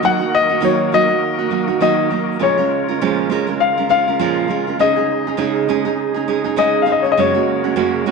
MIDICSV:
0, 0, Header, 1, 4, 480
1, 0, Start_track
1, 0, Tempo, 595829
1, 27, Time_signature, 4, 2, 24, 8
1, 6536, End_track
2, 0, Start_track
2, 0, Title_t, "Upright piano"
2, 0, Program_c, 0, 0
2, 40, Note_on_c, 0, 78, 114
2, 279, Note_on_c, 0, 75, 102
2, 280, Note_off_c, 0, 78, 0
2, 519, Note_off_c, 0, 75, 0
2, 521, Note_on_c, 0, 73, 80
2, 736, Note_off_c, 0, 73, 0
2, 758, Note_on_c, 0, 75, 108
2, 1455, Note_off_c, 0, 75, 0
2, 1467, Note_on_c, 0, 75, 92
2, 1955, Note_on_c, 0, 73, 95
2, 1959, Note_off_c, 0, 75, 0
2, 2876, Note_off_c, 0, 73, 0
2, 2903, Note_on_c, 0, 77, 96
2, 3126, Note_off_c, 0, 77, 0
2, 3145, Note_on_c, 0, 77, 102
2, 3831, Note_off_c, 0, 77, 0
2, 3871, Note_on_c, 0, 75, 97
2, 5275, Note_off_c, 0, 75, 0
2, 5305, Note_on_c, 0, 75, 90
2, 5494, Note_on_c, 0, 77, 81
2, 5509, Note_off_c, 0, 75, 0
2, 5565, Note_off_c, 0, 77, 0
2, 5575, Note_on_c, 0, 75, 77
2, 5659, Note_on_c, 0, 73, 73
2, 5660, Note_off_c, 0, 75, 0
2, 5726, Note_off_c, 0, 73, 0
2, 5734, Note_on_c, 0, 75, 89
2, 5788, Note_off_c, 0, 75, 0
2, 5800, Note_on_c, 0, 73, 87
2, 6536, Note_off_c, 0, 73, 0
2, 6536, End_track
3, 0, Start_track
3, 0, Title_t, "Tonewheel organ"
3, 0, Program_c, 1, 16
3, 0, Note_on_c, 1, 51, 60
3, 0, Note_on_c, 1, 58, 64
3, 0, Note_on_c, 1, 66, 64
3, 0, Note_on_c, 1, 70, 80
3, 1916, Note_off_c, 1, 58, 0
3, 1917, Note_off_c, 1, 66, 0
3, 1919, Note_off_c, 1, 51, 0
3, 1943, Note_on_c, 1, 65, 62
3, 1944, Note_on_c, 1, 56, 70
3, 1945, Note_on_c, 1, 49, 70
3, 3826, Note_off_c, 1, 70, 0
3, 3843, Note_off_c, 1, 65, 0
3, 3875, Note_on_c, 1, 63, 66
3, 3877, Note_on_c, 1, 68, 71
3, 5771, Note_off_c, 1, 63, 0
3, 5772, Note_off_c, 1, 68, 0
3, 5791, Note_on_c, 1, 66, 57
3, 5794, Note_on_c, 1, 70, 83
3, 6536, Note_off_c, 1, 49, 0
3, 6536, Note_off_c, 1, 56, 0
3, 6536, Note_off_c, 1, 66, 0
3, 6536, Note_off_c, 1, 70, 0
3, 6536, End_track
4, 0, Start_track
4, 0, Title_t, "Nylon-string guitar"
4, 0, Program_c, 2, 24
4, 21, Note_on_c, 2, 54, 68
4, 22, Note_on_c, 2, 51, 76
4, 25, Note_on_c, 2, 58, 77
4, 27, Note_on_c, 2, 63, 72
4, 30, Note_on_c, 2, 66, 84
4, 148, Note_off_c, 2, 66, 0
4, 157, Note_on_c, 2, 66, 52
4, 160, Note_off_c, 2, 63, 0
4, 163, Note_off_c, 2, 58, 0
4, 168, Note_off_c, 2, 51, 0
4, 168, Note_off_c, 2, 54, 0
4, 169, Note_on_c, 2, 63, 53
4, 172, Note_on_c, 2, 58, 43
4, 387, Note_off_c, 2, 66, 0
4, 396, Note_off_c, 2, 63, 0
4, 396, Note_on_c, 2, 66, 59
4, 404, Note_off_c, 2, 58, 0
4, 405, Note_on_c, 2, 63, 44
4, 413, Note_on_c, 2, 58, 43
4, 487, Note_on_c, 2, 51, 80
4, 488, Note_off_c, 2, 58, 0
4, 490, Note_off_c, 2, 63, 0
4, 496, Note_on_c, 2, 54, 81
4, 497, Note_off_c, 2, 66, 0
4, 498, Note_on_c, 2, 58, 87
4, 499, Note_on_c, 2, 63, 90
4, 506, Note_on_c, 2, 66, 87
4, 732, Note_off_c, 2, 54, 0
4, 736, Note_off_c, 2, 51, 0
4, 741, Note_off_c, 2, 58, 0
4, 742, Note_off_c, 2, 63, 0
4, 742, Note_on_c, 2, 54, 67
4, 746, Note_off_c, 2, 66, 0
4, 754, Note_on_c, 2, 58, 73
4, 755, Note_on_c, 2, 63, 77
4, 759, Note_on_c, 2, 66, 76
4, 862, Note_off_c, 2, 66, 0
4, 871, Note_on_c, 2, 66, 48
4, 875, Note_off_c, 2, 63, 0
4, 881, Note_off_c, 2, 58, 0
4, 884, Note_on_c, 2, 63, 43
4, 887, Note_off_c, 2, 54, 0
4, 891, Note_on_c, 2, 58, 45
4, 1106, Note_off_c, 2, 66, 0
4, 1113, Note_off_c, 2, 63, 0
4, 1116, Note_on_c, 2, 66, 54
4, 1122, Note_on_c, 2, 63, 44
4, 1125, Note_off_c, 2, 58, 0
4, 1135, Note_on_c, 2, 58, 42
4, 1203, Note_off_c, 2, 58, 0
4, 1212, Note_off_c, 2, 63, 0
4, 1213, Note_on_c, 2, 54, 60
4, 1213, Note_on_c, 2, 58, 62
4, 1217, Note_off_c, 2, 66, 0
4, 1221, Note_on_c, 2, 63, 57
4, 1226, Note_on_c, 2, 66, 61
4, 1340, Note_off_c, 2, 66, 0
4, 1348, Note_off_c, 2, 63, 0
4, 1350, Note_on_c, 2, 66, 53
4, 1357, Note_off_c, 2, 58, 0
4, 1358, Note_on_c, 2, 63, 44
4, 1362, Note_off_c, 2, 54, 0
4, 1366, Note_on_c, 2, 58, 44
4, 1453, Note_off_c, 2, 58, 0
4, 1454, Note_on_c, 2, 51, 88
4, 1455, Note_off_c, 2, 63, 0
4, 1455, Note_off_c, 2, 66, 0
4, 1459, Note_on_c, 2, 54, 82
4, 1463, Note_on_c, 2, 58, 92
4, 1464, Note_on_c, 2, 63, 94
4, 1468, Note_on_c, 2, 66, 93
4, 1685, Note_off_c, 2, 54, 0
4, 1688, Note_off_c, 2, 58, 0
4, 1694, Note_off_c, 2, 63, 0
4, 1695, Note_on_c, 2, 54, 60
4, 1697, Note_on_c, 2, 58, 66
4, 1699, Note_off_c, 2, 51, 0
4, 1703, Note_off_c, 2, 66, 0
4, 1704, Note_on_c, 2, 63, 62
4, 1713, Note_on_c, 2, 66, 65
4, 1928, Note_off_c, 2, 54, 0
4, 1928, Note_on_c, 2, 53, 71
4, 1931, Note_on_c, 2, 46, 64
4, 1931, Note_on_c, 2, 56, 70
4, 1933, Note_off_c, 2, 58, 0
4, 1933, Note_off_c, 2, 63, 0
4, 1936, Note_on_c, 2, 61, 75
4, 1937, Note_off_c, 2, 66, 0
4, 1937, Note_on_c, 2, 65, 84
4, 1940, Note_on_c, 2, 70, 75
4, 2066, Note_off_c, 2, 70, 0
4, 2076, Note_on_c, 2, 70, 55
4, 2077, Note_off_c, 2, 65, 0
4, 2079, Note_off_c, 2, 53, 0
4, 2080, Note_off_c, 2, 61, 0
4, 2081, Note_off_c, 2, 46, 0
4, 2081, Note_off_c, 2, 56, 0
4, 2086, Note_on_c, 2, 65, 53
4, 2089, Note_on_c, 2, 61, 50
4, 2091, Note_on_c, 2, 56, 48
4, 2314, Note_off_c, 2, 70, 0
4, 2319, Note_off_c, 2, 65, 0
4, 2324, Note_on_c, 2, 70, 56
4, 2328, Note_off_c, 2, 61, 0
4, 2329, Note_off_c, 2, 56, 0
4, 2329, Note_on_c, 2, 65, 52
4, 2338, Note_on_c, 2, 61, 52
4, 2345, Note_on_c, 2, 56, 43
4, 2421, Note_off_c, 2, 61, 0
4, 2422, Note_off_c, 2, 56, 0
4, 2422, Note_off_c, 2, 70, 0
4, 2424, Note_off_c, 2, 65, 0
4, 2427, Note_on_c, 2, 46, 80
4, 2429, Note_on_c, 2, 53, 88
4, 2430, Note_on_c, 2, 61, 96
4, 2432, Note_on_c, 2, 56, 81
4, 2435, Note_on_c, 2, 70, 86
4, 2436, Note_on_c, 2, 65, 82
4, 2646, Note_off_c, 2, 56, 0
4, 2655, Note_on_c, 2, 56, 74
4, 2657, Note_off_c, 2, 61, 0
4, 2661, Note_off_c, 2, 65, 0
4, 2664, Note_off_c, 2, 70, 0
4, 2665, Note_off_c, 2, 46, 0
4, 2666, Note_off_c, 2, 53, 0
4, 2667, Note_on_c, 2, 61, 85
4, 2670, Note_on_c, 2, 65, 76
4, 2673, Note_on_c, 2, 70, 90
4, 2783, Note_off_c, 2, 70, 0
4, 2792, Note_on_c, 2, 70, 52
4, 2797, Note_off_c, 2, 65, 0
4, 2801, Note_off_c, 2, 61, 0
4, 2803, Note_off_c, 2, 56, 0
4, 2806, Note_on_c, 2, 65, 49
4, 2811, Note_on_c, 2, 61, 47
4, 2814, Note_on_c, 2, 56, 45
4, 3033, Note_off_c, 2, 70, 0
4, 3037, Note_off_c, 2, 65, 0
4, 3042, Note_on_c, 2, 70, 58
4, 3044, Note_off_c, 2, 61, 0
4, 3047, Note_on_c, 2, 65, 46
4, 3050, Note_off_c, 2, 56, 0
4, 3054, Note_on_c, 2, 61, 49
4, 3058, Note_on_c, 2, 56, 43
4, 3125, Note_off_c, 2, 56, 0
4, 3127, Note_off_c, 2, 61, 0
4, 3132, Note_off_c, 2, 65, 0
4, 3134, Note_on_c, 2, 56, 58
4, 3136, Note_on_c, 2, 61, 62
4, 3140, Note_off_c, 2, 70, 0
4, 3141, Note_on_c, 2, 65, 71
4, 3149, Note_on_c, 2, 70, 63
4, 3274, Note_off_c, 2, 70, 0
4, 3277, Note_off_c, 2, 65, 0
4, 3282, Note_off_c, 2, 56, 0
4, 3283, Note_off_c, 2, 61, 0
4, 3284, Note_on_c, 2, 70, 52
4, 3287, Note_on_c, 2, 65, 54
4, 3296, Note_on_c, 2, 61, 53
4, 3299, Note_on_c, 2, 56, 40
4, 3370, Note_off_c, 2, 56, 0
4, 3378, Note_off_c, 2, 61, 0
4, 3379, Note_off_c, 2, 65, 0
4, 3379, Note_on_c, 2, 46, 90
4, 3379, Note_on_c, 2, 53, 86
4, 3380, Note_on_c, 2, 56, 88
4, 3381, Note_off_c, 2, 70, 0
4, 3388, Note_on_c, 2, 61, 84
4, 3388, Note_on_c, 2, 65, 100
4, 3391, Note_on_c, 2, 70, 98
4, 3598, Note_off_c, 2, 56, 0
4, 3608, Note_on_c, 2, 56, 56
4, 3610, Note_off_c, 2, 61, 0
4, 3617, Note_off_c, 2, 65, 0
4, 3620, Note_on_c, 2, 61, 54
4, 3621, Note_off_c, 2, 46, 0
4, 3621, Note_off_c, 2, 53, 0
4, 3621, Note_off_c, 2, 70, 0
4, 3626, Note_on_c, 2, 65, 75
4, 3630, Note_on_c, 2, 70, 71
4, 3752, Note_off_c, 2, 70, 0
4, 3759, Note_off_c, 2, 56, 0
4, 3760, Note_off_c, 2, 65, 0
4, 3762, Note_on_c, 2, 70, 44
4, 3765, Note_off_c, 2, 61, 0
4, 3769, Note_on_c, 2, 65, 47
4, 3776, Note_on_c, 2, 61, 46
4, 3780, Note_on_c, 2, 56, 40
4, 3854, Note_off_c, 2, 56, 0
4, 3857, Note_off_c, 2, 61, 0
4, 3860, Note_off_c, 2, 70, 0
4, 3861, Note_on_c, 2, 49, 81
4, 3863, Note_on_c, 2, 56, 70
4, 3864, Note_off_c, 2, 65, 0
4, 3867, Note_on_c, 2, 61, 81
4, 3868, Note_on_c, 2, 63, 70
4, 3873, Note_on_c, 2, 68, 89
4, 3988, Note_off_c, 2, 68, 0
4, 3998, Note_on_c, 2, 68, 60
4, 3999, Note_off_c, 2, 63, 0
4, 4006, Note_off_c, 2, 49, 0
4, 4007, Note_off_c, 2, 56, 0
4, 4008, Note_on_c, 2, 63, 58
4, 4009, Note_off_c, 2, 61, 0
4, 4019, Note_on_c, 2, 61, 44
4, 4235, Note_off_c, 2, 68, 0
4, 4245, Note_off_c, 2, 63, 0
4, 4245, Note_on_c, 2, 68, 66
4, 4247, Note_off_c, 2, 61, 0
4, 4254, Note_on_c, 2, 63, 51
4, 4257, Note_on_c, 2, 61, 50
4, 4322, Note_off_c, 2, 61, 0
4, 4327, Note_off_c, 2, 63, 0
4, 4328, Note_off_c, 2, 68, 0
4, 4328, Note_on_c, 2, 49, 88
4, 4331, Note_on_c, 2, 56, 76
4, 4332, Note_on_c, 2, 61, 81
4, 4336, Note_on_c, 2, 63, 85
4, 4337, Note_on_c, 2, 68, 88
4, 4570, Note_off_c, 2, 56, 0
4, 4573, Note_off_c, 2, 61, 0
4, 4575, Note_off_c, 2, 49, 0
4, 4580, Note_off_c, 2, 63, 0
4, 4580, Note_off_c, 2, 68, 0
4, 4580, Note_on_c, 2, 56, 72
4, 4583, Note_on_c, 2, 61, 87
4, 4589, Note_on_c, 2, 68, 92
4, 4591, Note_on_c, 2, 63, 76
4, 4703, Note_off_c, 2, 68, 0
4, 4712, Note_off_c, 2, 63, 0
4, 4713, Note_on_c, 2, 68, 65
4, 4719, Note_off_c, 2, 61, 0
4, 4721, Note_on_c, 2, 63, 57
4, 4725, Note_off_c, 2, 56, 0
4, 4728, Note_on_c, 2, 61, 50
4, 4940, Note_off_c, 2, 68, 0
4, 4950, Note_on_c, 2, 68, 63
4, 4954, Note_off_c, 2, 63, 0
4, 4962, Note_off_c, 2, 61, 0
4, 4964, Note_on_c, 2, 63, 60
4, 4971, Note_on_c, 2, 61, 53
4, 5048, Note_off_c, 2, 61, 0
4, 5054, Note_off_c, 2, 63, 0
4, 5054, Note_off_c, 2, 68, 0
4, 5057, Note_on_c, 2, 56, 65
4, 5057, Note_on_c, 2, 61, 68
4, 5064, Note_on_c, 2, 63, 75
4, 5069, Note_on_c, 2, 68, 72
4, 5180, Note_off_c, 2, 68, 0
4, 5189, Note_off_c, 2, 63, 0
4, 5190, Note_on_c, 2, 68, 55
4, 5199, Note_on_c, 2, 63, 57
4, 5200, Note_off_c, 2, 61, 0
4, 5204, Note_off_c, 2, 56, 0
4, 5209, Note_on_c, 2, 61, 45
4, 5286, Note_off_c, 2, 61, 0
4, 5286, Note_off_c, 2, 63, 0
4, 5287, Note_on_c, 2, 49, 84
4, 5290, Note_off_c, 2, 68, 0
4, 5292, Note_on_c, 2, 56, 93
4, 5295, Note_on_c, 2, 61, 91
4, 5295, Note_on_c, 2, 63, 99
4, 5299, Note_on_c, 2, 68, 108
4, 5514, Note_off_c, 2, 56, 0
4, 5517, Note_off_c, 2, 61, 0
4, 5519, Note_off_c, 2, 63, 0
4, 5524, Note_on_c, 2, 56, 60
4, 5526, Note_off_c, 2, 68, 0
4, 5526, Note_on_c, 2, 61, 67
4, 5529, Note_on_c, 2, 63, 67
4, 5535, Note_off_c, 2, 49, 0
4, 5535, Note_on_c, 2, 68, 73
4, 5662, Note_off_c, 2, 68, 0
4, 5672, Note_on_c, 2, 68, 44
4, 5676, Note_off_c, 2, 63, 0
4, 5678, Note_off_c, 2, 56, 0
4, 5679, Note_off_c, 2, 61, 0
4, 5686, Note_on_c, 2, 63, 49
4, 5692, Note_on_c, 2, 61, 38
4, 5776, Note_off_c, 2, 68, 0
4, 5779, Note_on_c, 2, 42, 81
4, 5780, Note_off_c, 2, 61, 0
4, 5781, Note_on_c, 2, 56, 91
4, 5783, Note_off_c, 2, 63, 0
4, 5787, Note_on_c, 2, 49, 65
4, 5787, Note_on_c, 2, 58, 73
4, 5789, Note_on_c, 2, 61, 80
4, 5791, Note_on_c, 2, 66, 80
4, 5907, Note_off_c, 2, 66, 0
4, 5910, Note_off_c, 2, 61, 0
4, 5915, Note_off_c, 2, 58, 0
4, 5917, Note_on_c, 2, 66, 53
4, 5919, Note_on_c, 2, 61, 53
4, 5921, Note_off_c, 2, 56, 0
4, 5925, Note_on_c, 2, 58, 49
4, 5926, Note_off_c, 2, 42, 0
4, 5930, Note_off_c, 2, 49, 0
4, 5930, Note_on_c, 2, 56, 54
4, 6144, Note_off_c, 2, 66, 0
4, 6146, Note_off_c, 2, 61, 0
4, 6151, Note_off_c, 2, 58, 0
4, 6154, Note_on_c, 2, 66, 55
4, 6156, Note_on_c, 2, 61, 53
4, 6158, Note_off_c, 2, 56, 0
4, 6161, Note_on_c, 2, 58, 54
4, 6168, Note_on_c, 2, 56, 41
4, 6241, Note_off_c, 2, 56, 0
4, 6246, Note_off_c, 2, 58, 0
4, 6246, Note_off_c, 2, 61, 0
4, 6250, Note_off_c, 2, 66, 0
4, 6250, Note_on_c, 2, 42, 79
4, 6250, Note_on_c, 2, 49, 83
4, 6250, Note_on_c, 2, 56, 85
4, 6255, Note_on_c, 2, 61, 80
4, 6256, Note_on_c, 2, 58, 93
4, 6259, Note_on_c, 2, 66, 87
4, 6484, Note_off_c, 2, 56, 0
4, 6490, Note_off_c, 2, 58, 0
4, 6493, Note_off_c, 2, 61, 0
4, 6494, Note_on_c, 2, 56, 79
4, 6496, Note_off_c, 2, 66, 0
4, 6497, Note_off_c, 2, 42, 0
4, 6497, Note_off_c, 2, 49, 0
4, 6499, Note_on_c, 2, 58, 82
4, 6502, Note_on_c, 2, 61, 87
4, 6506, Note_on_c, 2, 66, 83
4, 6536, Note_off_c, 2, 56, 0
4, 6536, Note_off_c, 2, 58, 0
4, 6536, Note_off_c, 2, 61, 0
4, 6536, Note_off_c, 2, 66, 0
4, 6536, End_track
0, 0, End_of_file